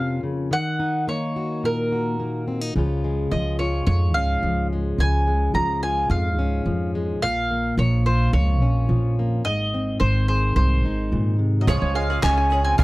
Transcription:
0.00 0.51 F2 medium
0.00 0.23 C3 medium
0.00 0.48 F3 soft
0.00 0.48 A#3 soft
0.00 0.48 C#4 soft
0.00 0.52 F4 medium
0.00 0.20 F5 medium
0.23 0.51 C#3 medium
0.51 2.75 D#3 medium
0.51 1.04 F#5 medium
0.79 2.47 D#4 medium
1.08 2.19 A#3 soft
1.08 1.65 C#5 medium
1.36 1.91 F#4 medium
1.63 2.75 A#2 soft
1.63 2.44 A#4 medium
1.92 2.72 F#4 medium
2.20 2.72 A#3 medium
2.48 2.61 C4 soft
2.61 2.75 D#4 soft
2.76 3.27 C#2 medium
2.76 3.31 C#3 medium
2.76 3.31 F3 soft
2.76 3.04 G#3 soft
2.76 4.15 C#4 soft
2.76 3.60 F4 medium
3.04 4.71 G#3 soft
3.31 3.84 C#2 medium
3.31 4.43 F3 medium
3.31 3.57 D#5 medium
3.59 5.83 F4 medium
3.59 3.85 C#5 medium
3.87 4.15 F2 medium
3.87 4.95 G#2 soft
3.87 4.16 C#5 medium
4.14 4.41 C#2 medium
4.14 6.38 C#4 soft
4.14 4.66 F5 medium
4.43 4.95 C#2 medium
4.43 5.55 F3 medium
4.73 5.26 G#3 soft
4.98 5.51 C#2 medium
4.98 5.55 C#3 medium
4.98 5.51 G#5 medium
5.27 6.94 G#3 medium
5.54 6.06 C#2 medium
5.54 6.65 F3 medium
5.54 5.82 A#5 medium
5.83 8.05 F4 medium
5.83 6.09 G#5 medium
6.10 6.38 F2 medium
6.10 7.19 G#2 soft
6.10 6.90 F5 medium
6.38 6.64 C#2 medium
6.38 7.19 C#4 soft
6.66 7.21 F2 medium
6.66 7.19 F3 soft
6.95 7.22 G#3 medium
7.21 7.74 A#1 medium
7.21 8.34 A#2 medium
7.21 7.74 F5 loud
7.51 9.18 A#3 medium
7.77 8.30 A#1 medium
7.77 8.88 F3 medium
7.77 8.06 C#5 medium
8.06 9.46 F4 medium
8.06 8.33 C5 medium
8.33 8.61 C#2 medium
8.33 9.45 F2 medium
8.33 9.13 C#5 medium
8.61 8.87 A#1 medium
8.61 9.42 C#4 medium
8.89 9.44 A#1 medium
8.89 9.42 F3 medium
9.19 9.43 A#3 soft
9.44 9.97 G#1 medium
9.44 10.55 G#2 medium
9.44 9.97 D#5 medium
9.74 11.65 C4 soft
10.00 10.53 G#1 medium
10.00 11.68 D#3 medium
10.00 10.27 C5 medium
10.28 11.65 G#4 medium
10.28 10.55 C5 medium
10.56 10.84 C2 medium
10.56 11.64 G#2 medium
10.56 11.36 C5 medium
10.84 11.10 G#1 medium
10.84 11.65 D#4 soft
11.12 11.64 G#2 medium
11.12 11.38 A#2 medium
11.39 11.67 C3 soft
11.60 11.67 F#3 soft
11.60 11.68 D#5 soft
11.67 11.81 C#2 medium
11.67 12.84 C#2 medium
11.67 12.09 C#3 medium
11.67 12.84 C#3 medium
11.67 12.10 F3 medium
11.67 11.94 F3 medium
11.67 11.89 G#3 medium
11.67 12.10 G#3 medium
11.67 11.89 C#4 medium
11.67 12.10 C#4 medium
11.67 11.89 F4 medium
11.67 12.08 F4 medium
11.67 12.09 G#4 medium
11.67 11.94 C#5 medium
11.67 11.89 C#5 loud
11.67 cajon bass loud
11.82 12.21 C#2 medium
11.82 12.23 C#5 medium
11.95 12.16 G#3 medium
11.95 12.21 G#3 medium
11.95 12.17 C#4 medium
11.95 12.17 F4 medium
11.95 12.17 C#5 medium
11.95 12.23 F5 medium
11.95 12.36 G#5 medium
12.09 12.23 G#3 soft
12.09 12.23 C#4 soft
12.09 12.23 F4 soft
12.09 12.51 G#4 medium
12.09 cajon slap soft
12.22 12.75 C#2 medium
12.22 12.51 C#3 medium
12.22 12.49 F3 medium
12.22 12.44 G#3 medium
12.22 12.50 G#3 medium
12.22 12.62 C#4 medium
12.22 12.45 C#4 medium
12.22 12.51 C#4 medium
12.22 12.45 F4 medium
12.22 12.52 F4 medium
12.22 12.79 C#5 medium
12.22 12.45 C#5 medium
12.22 12.63 G#5 medium
12.22 cajon slap loud
12.22 clap medium
12.38 12.78 G#5 medium
12.50 12.84 F3 medium
12.50 12.72 G#3 medium
12.50 12.84 G#3 medium
12.50 12.72 C#4 medium
12.50 12.84 C#4 medium
12.50 12.73 F4 medium
12.50 12.84 F4 medium
12.50 12.84 G#4 medium
12.50 12.73 C#5 medium
12.64 12.77 C4 medium
12.64 12.78 G#5 medium
12.78 12.84 C#2 loud
12.78 12.84 G#3 medium
12.78 12.84 C#4 medium
12.78 12.84 F4 medium
12.78 12.84 C#5 medium
12.78 12.84 F5 medium
12.78 12.84 G#5 medium
12.78 cajon bass loud

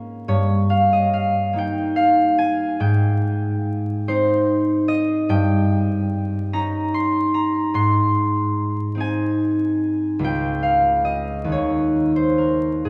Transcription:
0.00 0.31 G#2 medium
0.00 1.53 A#3 soft
0.00 2.84 C#4 soft
0.00 2.84 A#4 medium
0.00 0.31 F5 medium
0.28 2.84 G2 medium
0.28 2.84 C#5 medium
0.70 1.06 F5 medium
0.93 1.28 D#5 medium
1.13 1.84 F5 medium
1.53 2.84 A#3 soft
1.53 4.08 D#4 medium
1.58 2.79 G5 medium
1.96 2.84 F5 medium
2.38 3.10 G#5 medium
2.80 5.34 G#2 medium
2.80 5.28 G5 medium
4.08 5.34 C4 medium
4.08 6.53 D#4 medium
4.08 5.34 C5 medium
4.88 8.78 D#5 medium
5.29 7.77 G2 medium
5.29 7.77 G5 medium
6.53 7.78 C#4 medium
6.53 8.96 D#4 medium
6.53 7.33 A#5 medium
6.94 7.62 C6 medium
7.34 7.78 A#5 medium
7.74 10.25 G#2 medium
7.74 10.25 C6 loud
8.95 10.25 C4 soft
8.95 10.25 D#4 medium
9.00 11.53 G#5 medium
10.19 11.52 C#2 medium
10.19 12.89 C#4 soft
10.19 11.53 F4 soft
10.24 10.93 G5 medium
10.63 11.52 F5 medium
11.05 11.79 D#5 medium
11.44 12.89 D#2 medium
11.44 12.89 A#3 soft
11.49 12.89 D#4 soft
11.49 12.89 C#5 medium
12.16 12.55 C5 medium
12.38 12.89 A#4 medium
12.85 12.89 G#2 medium
12.85 12.89 G#4 medium

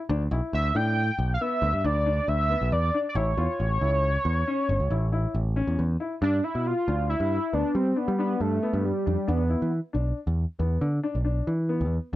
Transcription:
0.09 0.27 D2 loud
0.09 0.21 D4 medium
0.31 0.40 B1 loud
0.31 0.55 E4 medium
0.53 0.70 D2 medium
0.53 0.78 E5 medium
0.75 1.10 A2 medium
0.75 0.98 D4 medium
0.75 1.33 G5 loud
1.19 1.36 B1 medium
1.34 1.43 F5 medium
1.41 1.64 B3 medium
1.41 1.87 E5 loud
1.62 1.71 D2 loud
1.73 1.82 G2 medium
1.84 2.19 D2 loud
1.84 1.96 D4 medium
1.84 2.30 D5 medium
2.06 2.30 D4 medium
2.28 2.54 D2 medium
2.28 2.74 E5 loud
2.50 2.73 B3 medium
2.61 2.70 B1 medium
2.72 2.89 E2 medium
2.72 3.08 D5 loud
2.94 3.06 D4 medium
3.09 3.17 D5 medium
3.15 3.33 A1 loud
3.15 3.27 E4 medium
3.15 5.78 C#5 loud
3.37 3.46 E2 loud
3.37 3.61 F4 medium
3.60 3.77 A1 medium
3.81 4.16 C#2 medium
3.81 4.05 E4 medium
4.25 4.42 E2 medium
4.47 4.71 C#4 medium
4.69 4.78 G1 medium
4.80 4.88 C#2 medium
4.90 5.25 A1 medium
4.90 5.02 E4 medium
5.12 5.36 E4 medium
5.34 5.60 A1 medium
5.56 5.80 C#4 medium
5.67 5.76 E2 medium
5.79 5.96 E2 medium
6.00 6.12 E4 medium
6.22 6.39 G2 loud
6.22 6.33 D4 medium
6.22 6.46 D4 loud
6.44 6.67 E4 medium
6.44 6.68 E4 loud
6.55 6.72 B2 medium
6.67 7.09 F4 loud
6.88 7.14 D2 medium
6.88 7.11 D4 medium
7.09 7.55 E4 loud
7.20 7.37 G2 medium
7.53 7.62 D2 medium
7.53 7.76 B3 medium
7.53 7.77 D4 loud
7.75 7.92 G3 medium
7.75 7.99 C4 medium
7.96 8.18 B3 medium
7.96 8.08 D4 medium
8.08 8.34 G3 medium
8.19 8.43 B3 medium
8.19 8.42 D4 medium
8.40 8.58 G2 medium
8.40 8.86 A3 medium
8.63 8.86 B3 medium
8.73 8.91 G2 medium
8.85 9.29 G3 medium
9.06 9.15 F2 medium
9.06 9.18 D4 medium
9.28 9.54 E2 loud
9.28 9.72 B3 medium
9.28 9.39 D4 medium
9.49 9.73 E4 medium
9.62 9.79 E3 medium
9.93 10.12 B1 medium
9.93 10.17 D4 medium
10.27 10.44 E2 medium
10.59 10.77 E2 medium
10.59 10.83 B3 medium
10.81 10.99 D3 medium
11.03 11.15 D4 medium
11.15 11.41 B1 medium
11.25 11.48 D4 medium
11.47 11.82 E3 medium
11.69 11.93 B3 medium
11.81 11.98 E2 medium

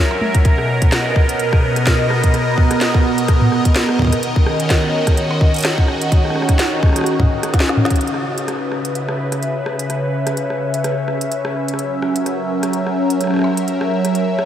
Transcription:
0.00 0.45 F#3 medium
0.00 1.97 C#4 medium
0.00 5.66 A#4 medium
0.00 0.45 E5 medium
0.11 cross-stick soft
0.21 mid tom medium
0.35 kick loud
0.35 closed hi-hat medium
0.45 4.23 B2 medium
0.45 kick loud
0.45 closed hi-hat soft
0.58 cross-stick soft
0.67 4.23 B3 medium
0.77 8.01 D#5 medium
0.82 kick loud
0.82 closed hi-hat medium
0.92 cross-stick medium
0.92 snare loud
0.92 closed hi-hat soft
1.16 kick loud
1.16 cross-stick soft
1.29 closed hi-hat medium
1.40 closed hi-hat soft
1.53 kick loud
1.53 cross-stick medium
1.76 cross-stick soft
1.76 closed hi-hat medium
1.87 kick loud
1.87 snare loud
1.87 closed hi-hat soft
2.10 cross-stick medium
2.24 kick loud
2.24 closed hi-hat medium
2.34 cross-stick soft
2.34 closed hi-hat soft
2.58 kick loud
2.71 cross-stick medium
2.71 closed hi-hat medium
2.81 snare loud
2.81 closed hi-hat soft
2.94 kick loud
2.94 cross-stick soft
3.18 closed hi-hat medium
3.28 kick loud
3.28 cross-stick medium
3.28 closed hi-hat soft
3.42 mid tom medium
3.52 cross-stick medium
3.65 kick loud
3.65 closed hi-hat medium
3.76 snare loud
3.76 closed hi-hat soft
3.89 cross-stick medium
3.99 kick loud
3.99 mid tom medium
4.02 kick medium
4.05 kick medium
4.07 kick medium
4.10 kick soft
4.10 cross-stick soft
4.10 closed hi-hat medium
4.23 8.01 D#3 medium
4.23 closed hi-hat soft
4.36 kick loud
4.40 14.45 C#4 medium
4.47 9.44 F#4 medium
4.47 cross-stick medium
4.60 closed hi-hat medium
4.70 kick loud
4.70 cross-stick soft
4.70 snare loud
4.70 closed hi-hat soft
5.07 kick medium
5.07 cross-stick medium
5.07 closed hi-hat medium
5.17 closed hi-hat soft
5.31 cross-stick medium
5.41 kick loud
5.54 closed hi-hat soft
5.56 closed hi-hat soft
5.58 closed hi-hat soft
5.61 closed hi-hat soft
5.63 cross-stick medium
5.63 snare loud
5.63 closed hi-hat medium
5.78 kick loud
5.88 cross-stick medium
6.02 closed hi-hat medium
6.12 kick loud
6.12 closed hi-hat medium
6.25 cross-stick soft
6.30 cross-stick soft
6.36 cross-stick medium
6.42 cross-stick medium
6.49 kick medium
6.49 cross-stick medium
6.49 closed hi-hat medium
6.59 snare loud
6.59 closed hi-hat soft
6.83 kick loud
6.83 cross-stick soft
6.86 cross-stick soft
6.89 cross-stick soft
6.93 cross-stick medium
6.96 cross-stick medium
6.96 closed hi-hat medium
6.99 cross-stick medium
7.01 cross-stick medium
7.04 cross-stick medium
7.04 closed hi-hat medium
7.20 kick loud
7.20 mid tom medium
7.43 cross-stick medium
7.43 closed hi-hat medium
7.54 kick loud
7.54 snare medium
7.54 closed hi-hat medium
7.60 snare loud
7.69 snare medium
7.77 mid tom medium
7.85 snare medium
7.90 kick loud
7.90 closed hi-hat medium
7.96 closed hi-hat soft
8.01 11.79 C#3 medium
8.01 closed hi-hat soft
8.07 closed hi-hat soft
8.14 cross-stick soft
8.31 11.79 B4 medium
8.38 closed hi-hat medium
8.48 cross-stick medium
8.48 closed hi-hat soft
8.72 cross-stick soft
8.85 14.45 E5 medium
8.85 closed hi-hat medium
8.95 closed hi-hat soft
9.09 cross-stick medium
9.32 cross-stick soft
9.32 closed hi-hat medium
9.43 closed hi-hat soft
9.66 cross-stick medium
9.79 closed hi-hat medium
9.90 cross-stick soft
9.90 closed hi-hat soft
10.27 cross-stick medium
10.27 closed hi-hat medium
10.37 closed hi-hat soft
10.50 cross-stick soft
10.74 closed hi-hat medium
10.84 cross-stick medium
10.84 closed hi-hat soft
11.08 cross-stick soft
11.21 closed hi-hat medium
11.32 closed hi-hat soft
11.45 cross-stick medium
11.68 closed hi-hat medium
11.74 cross-stick soft
11.79 14.45 F#3 medium
11.79 closed hi-hat soft
12.02 cross-stick medium
12.16 closed hi-hat medium
12.25 14.45 A#4 medium
12.25 cross-stick soft
12.25 closed hi-hat soft
12.63 cross-stick medium
12.63 closed hi-hat medium
12.73 closed hi-hat soft
12.87 cross-stick soft
13.10 closed hi-hat medium
13.21 cross-stick soft
13.21 closed hi-hat soft
13.24 cross-stick soft
13.27 cross-stick soft
13.31 cross-stick soft
13.34 cross-stick soft
13.36 cross-stick medium
13.39 cross-stick medium
13.42 cross-stick medium
13.44 cross-stick soft
13.57 closed hi-hat medium
13.68 closed hi-hat soft
13.81 cross-stick medium
14.05 cross-stick soft
14.05 closed hi-hat medium
14.15 closed hi-hat soft
14.39 cross-stick medium

